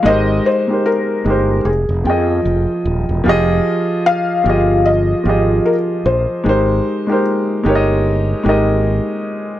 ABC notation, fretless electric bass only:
X:1
M:4/4
L:1/16
Q:"Swing 16ths" 1/4=75
K:Fm
V:1 name="Fretless electric bass" clef=bass
A,,,2 z4 G,,,2 F,,, F,,, F,,2 F,,, z E,,, =E,,, | F,,,2 z4 G,,,4 A,,,2 z2 B,,, z | A,,,2 z4 G,,,4 A,,,3 z3 |]